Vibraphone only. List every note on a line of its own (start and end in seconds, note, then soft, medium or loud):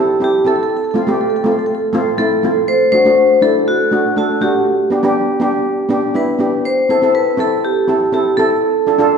0.00 0.23 G4 medium
0.24 0.46 G4 medium
0.48 0.54 A4 medium
0.56 0.62 A4 medium
0.63 0.68 A4 medium
0.70 0.76 A4 medium
0.77 0.83 A4 medium
0.85 0.90 A4 soft
0.91 0.97 A4 medium
0.98 1.06 A4 soft
1.07 1.13 A4 soft
1.14 1.20 A4 soft
1.21 1.28 A4 medium
1.30 1.35 A4 soft
1.36 1.43 A4 medium
1.44 1.51 A4 soft
1.52 1.58 A4 medium
1.59 1.65 A4 medium
1.66 1.73 A4 medium
1.75 1.81 A4 medium
2.18 2.70 A4 medium
2.68 2.91 C5 loud
2.92 3.39 C5 loud
3.42 3.68 A4 medium
3.68 4.14 F#4 medium
4.18 4.43 F#4 medium
4.42 5.86 G4 medium
6.16 6.62 B4 medium
6.65 6.88 C5 medium
6.90 7.13 C5 medium
7.15 7.37 B4 medium
7.40 7.65 A4 medium
7.65 8.10 G4 medium
8.14 8.36 G4 medium
8.37 9.18 A4 medium